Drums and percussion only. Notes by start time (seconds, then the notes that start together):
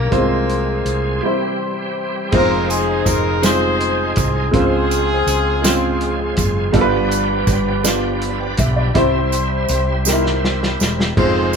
0.12 kick, closed hi-hat
0.49 closed hi-hat
0.86 closed hi-hat
2.32 kick, crash
2.70 closed hi-hat, tambourine
3.06 kick, closed hi-hat, tambourine
3.43 snare, closed hi-hat, tambourine
3.80 closed hi-hat
4.16 kick, closed hi-hat, tambourine
4.54 kick, closed hi-hat
4.91 closed hi-hat, tambourine
5.27 closed hi-hat, tambourine
5.64 snare, closed hi-hat, tambourine
6.01 closed hi-hat
6.37 kick, closed hi-hat, tambourine
6.73 kick, closed hi-hat
7.11 closed hi-hat, tambourine
7.47 kick, closed hi-hat, tambourine
7.84 snare, closed hi-hat, tambourine
8.21 closed hi-hat
8.57 kick, closed hi-hat, tambourine
8.95 kick, closed hi-hat
9.32 closed hi-hat, tambourine
9.69 closed hi-hat, tambourine
10.05 snare, tambourine
10.26 snare
10.44 snare
10.63 snare
10.80 snare, tambourine
11.00 snare
11.17 kick, crash
11.53 tambourine